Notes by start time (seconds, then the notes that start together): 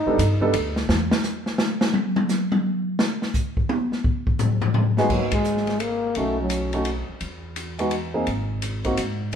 Already playing: D#4
0.06 G2 G3 B3 D4 D#4 A4
0.18 G2, hi-hat pedal, ride
0.41 G3 B3 D4 D#4 A4
0.54 D2, ride
0.76 snare
0.89 E2, snare
1.11 snare
1.23 snare, hi-hat pedal
1.46 snare
1.58 snare
1.81 snare
1.94 mid tom
2.16 mid tom
2.29 snare, hi-hat pedal
2.52 mid tom
2.99 snare
3.22 snare
3.34 kick, hi-hat pedal
3.57 kick
3.69 high tom
3.92 snare
4.04 kick
4.27 kick
4.39 floor tom, hi-hat pedal
4.62 floor tom
4.74 floor tom
4.97 G#3 B3 D#4 F#4 G#4, snare
5.10 G#1 F#3 A#3 B3 D#4, kick, crash
5.32 G#3, kick, ride
5.44 hi-hat pedal
5.57 snare
5.67 snare, ride
5.80 A#3, ride
6.15 B1 A3 C#4 D#4 F#4, ride
6.42 F#3
6.50 hi-hat pedal, ride
6.73 A3 C#4 D#4 F#4, ride
6.85 ride
7.09 muted upright bass stroke
7.21 E2, ride
7.56 hi-hat pedal, ride
7.79 G#3 B3 D#4 F#4, ride
7.91 ride
8.14 A#3 C4 D#4 G#4
8.27 G#1, ride
8.62 hi-hat pedal, ride
8.85 A#3 C4 D#4 F#4, kick, ride
8.97 G#2, hi-hat pedal, ride